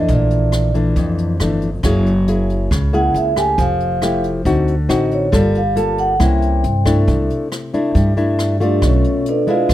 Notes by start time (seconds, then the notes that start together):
Already playing: E3 A3 D4
0.08 A#1 A#2, kick, closed hi-hat
0.14 D5
0.30 closed hi-hat
0.52 cross-stick, closed hi-hat
0.74 E3 A3 D4, closed hi-hat
0.96 F2, kick, closed hi-hat
1.18 closed hi-hat
1.40 G1 E3 A3 D4, cross-stick, closed hi-hat
1.61 closed hi-hat
1.83 F#1 F#3 A#3 E4 G#4, kick, cross-stick, closed hi-hat
2.06 closed hi-hat
2.28 A#3 E4 G#4, closed hi-hat
2.49 closed hi-hat
2.71 C#2 C#3, kick, cross-stick, closed hi-hat
2.93 A#3 E4 G#4 F#5, closed hi-hat
3.14 C#2 E5, closed hi-hat
3.36 A3 G4 G#5, cross-stick, closed hi-hat
3.58 F1 F3 F5, kick, closed hi-hat
3.80 closed hi-hat
4.02 A3 E4 G4, cross-stick, closed hi-hat
4.24 closed hi-hat
4.45 D2 D3 C4 D#4 F#4, kick, closed hi-hat
4.68 closed hi-hat
4.89 A1 C4 D#4 F#4 D#5, cross-stick, closed hi-hat
5.11 C#5, closed hi-hat
5.32 G1 G3 A#3 F4 A4 D5, kick, cross-stick, closed hi-hat
5.55 F5, closed hi-hat
5.76 A#3 F4 A4 A5, closed hi-hat
5.98 F#5, closed hi-hat
6.20 C2 C3 A#3 C#4 E4 G5, kick, cross-stick, closed hi-hat
6.42 closed hi-hat
6.64 G2, closed hi-hat
6.85 A3 D4 E4, kick, cross-stick, closed hi-hat
7.08 C2 C3, kick, closed hi-hat
7.30 closed hi-hat
7.52 cross-stick, closed hi-hat
7.74 A3 D4 E4, closed hi-hat
7.95 G2 G3, kick, closed hi-hat
8.17 A3 D4 E4, closed hi-hat
8.39 cross-stick, closed hi-hat
8.60 A3 D4 F4 G4 A4 D5, closed hi-hat
8.82 B1 B2 C#4 C#5, kick, cross-stick, closed hi-hat
9.04 closed hi-hat
9.26 D4 A4 B4 D5, closed hi-hat
9.47 G#3 D4 E4 F4 B4 D5 F5, closed hi-hat
9.69 A#1 A#2, kick, cross-stick, closed hi-hat